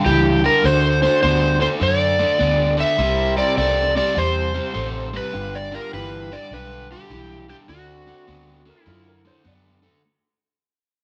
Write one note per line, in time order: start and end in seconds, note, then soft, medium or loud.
0.05 0.48 C#2 medium
0.05 0.40 G2 medium
0.05 0.40 E3 medium
0.05 0.42 G4 medium
0.44 0.62 G2 medium
0.44 0.62 D3 medium
0.44 0.66 A#4 medium
0.64 1.07 D2 medium
0.64 0.99 D3 medium
0.64 0.99 A3 medium
0.64 0.87 D4 medium
0.64 0.87 F#4 medium
0.64 0.87 C5 medium
0.64 1.02 C5 loud
1.02 1.21 D3 medium
1.02 1.21 A3 medium
1.02 1.70 D4 medium
1.02 1.70 F#4 medium
1.02 1.70 C5 medium
1.02 1.22 C5 medium
1.22 1.66 D2 medium
1.22 1.57 D3 medium
1.22 1.57 B3 medium
1.22 1.60 C5 medium
1.60 1.79 D3 medium
1.60 1.79 A3 medium
1.60 1.67 C5 loud
1.80 2.24 F#2 medium
1.80 2.15 D3 medium
1.80 2.16 A3 loud
1.80 2.75 D5 loud
2.19 2.38 D3 medium
2.19 2.38 A3 medium
2.39 2.83 D2 medium
2.39 2.74 D3 medium
2.39 2.74 B3 medium
2.77 2.96 D3 medium
2.77 2.97 A3 medium
2.77 3.38 E5 loud
2.98 3.41 C2 medium
2.98 3.33 C3 medium
2.98 3.33 G3 medium
2.98 4.00 C4 medium
2.98 4.00 E4 medium
2.98 4.00 A#4 medium
3.37 3.55 C3 medium
3.37 3.55 G3 medium
3.37 3.57 D5 loud
3.57 4.00 C2 medium
3.57 3.92 C3 medium
3.57 3.92 A3 medium
3.57 3.96 D5 medium
3.95 4.14 C3 medium
3.95 4.14 G3 medium
3.95 4.18 D5 loud
4.15 4.59 E2 medium
4.15 4.50 C3 medium
4.15 4.50 G3 medium
4.15 5.16 C5 medium
4.54 4.73 C3 medium
4.54 4.73 G3 medium
4.74 5.18 A1 medium
4.74 5.09 C3 medium
4.74 5.09 A3 loud
5.13 5.32 C3 medium
5.13 5.32 G3 medium
5.13 5.56 B4 loud
5.33 5.77 G1 medium
5.33 5.68 G2 medium
5.33 5.68 D3 medium
5.33 5.57 B3 medium
5.33 5.57 F4 medium
5.33 5.57 G4 medium
5.55 5.74 D5 medium
5.71 5.90 G2 medium
5.71 5.90 D3 medium
5.71 6.39 B3 medium
5.71 6.39 F4 medium
5.71 6.39 G4 medium
5.71 5.94 A#4 medium
5.93 6.36 G1 medium
5.93 6.27 G2 medium
5.93 6.27 E3 loud
5.93 6.33 B4 medium
6.32 6.49 G2 medium
6.32 6.50 D3 medium
6.32 6.51 D5 loud
6.51 6.94 B1 loud
6.51 6.86 G2 medium
6.51 6.87 D3 medium
6.51 6.88 B4 medium
6.91 7.08 G2 medium
6.91 7.09 D3 medium
6.91 7.49 G4 medium
7.10 7.53 B1 medium
7.10 7.45 G2 medium
7.10 7.45 E3 medium
7.48 7.67 G2 medium
7.48 7.67 D3 medium
7.48 7.55 G4 medium
7.68 8.11 D2 medium
7.68 8.03 D3 medium
7.68 8.03 A3 medium
7.68 8.70 C4 medium
7.68 8.69 D4 medium
7.68 8.70 F#4 medium
7.68 8.82 F#4 medium
8.06 8.25 D3 medium
8.06 8.25 A3 medium
8.27 8.71 D2 medium
8.27 8.62 D3 medium
8.27 8.62 B3 medium
8.66 8.84 D3 medium
8.66 8.84 A3 medium
8.66 8.87 A#4 medium
8.82 9.20 D3 medium
8.82 9.21 A3 loud
8.82 9.41 E4 medium
8.87 9.29 F#2 loud
8.87 9.06 F4 medium
9.08 9.26 A#4 medium
9.25 9.43 D3 medium
9.25 9.43 A3 medium
9.25 9.45 C5 medium
9.44 9.88 F#2 medium
9.44 9.79 D3 medium
9.44 9.79 B3 loud
9.44 9.93 D5 loud
9.82 10.01 D3 medium
9.82 10.01 A3 medium